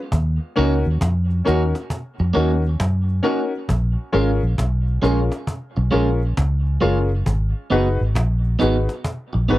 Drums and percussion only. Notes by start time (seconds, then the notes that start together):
0.12 cajon bass
0.56 cajon slap
0.84 cajon slap
1.01 cajon bass, cajon slap
1.30 cajon slap
1.46 cajon slap
1.75 cajon slap
1.90 cajon bass
2.18 cajon slap
2.35 cajon slap
2.64 cajon slap
2.80 cajon bass, cajon slap
3.09 cajon slap
3.24 cajon slap
3.69 cajon bass
4.14 cajon slap
4.42 cajon slap
4.58 cajon bass, cajon slap
4.87 cajon slap
5.03 cajon slap
5.32 cajon slap
5.47 cajon bass
5.76 cajon slap
5.93 cajon slap
6.21 cajon slap
6.37 cajon bass, cajon slap
6.66 cajon slap
6.81 cajon slap
7.26 cajon bass
7.71 cajon slap
7.99 cajon slap
8.15 cajon bass, cajon slap
8.44 cajon slap
8.60 cajon slap
8.89 cajon slap
9.04 cajon bass
9.33 cajon slap
9.50 cajon slap